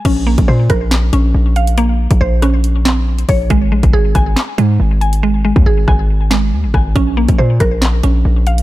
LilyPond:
<<
  \new Staff \with { instrumentName = "Synth pluck" } { \time 4/4 \key bes \minor \tempo 4 = 139 des'8 bes8 c''8 bes'4 des'4 f''8 | bes4 c''8 des'4 c'4 des''8 | aes8 aes8 aes'8 aes''4 aes4 aes''8 | aes8 aes8 aes'8 aes''4 aes4 aes''8 |
des'8 bes8 c''8 bes'4 des'4 f''8 | }
  \new Staff \with { instrumentName = "808-style bass" } { \clef bass \time 4/4 \key bes \minor bes,,8. bes,,16 bes,8 bes,,4 bes,,8 bes,,4~ | bes,,8. bes,,16 bes,,2~ bes,,8 bes,,8 | aes,,8 bes,,16 aes,,16 aes,,8 aes,,8 r8 aes,8 aes,,4~ | aes,,8. ees,16 aes,,8 aes,,4. ees,16 aes,,16 aes,,8 |
bes,,8. bes,,16 bes,8 bes,,4 bes,,8 bes,,4 | }
  \new DrumStaff \with { instrumentName = "Drums" } \drummode { \time 4/4 <cymc hh bd>8. <hh bd>16 r8 <hh bd ss>8 <hc hh sn>8 hh8 r8 hh16 hh16 | hh8. <hh bd>16 r8 <hh ss>8 hh8 <hc hh sn>8 r16 hh16 <hh hho bd>8 | <hh bd>8. <hh bd>16 r8 <hh bd ss>8 <hc hh sn>8 hh8 r8 hh16 hh16 | r8. bd16 r8 <bd ss>8 r8 <hc sn>8 r8 <bd ss>8 |
<hh bd>8. <hh bd>16 r8 <hh bd ss>8 <hc hh sn>8 hh8 r8 hh16 hh16 | }
>>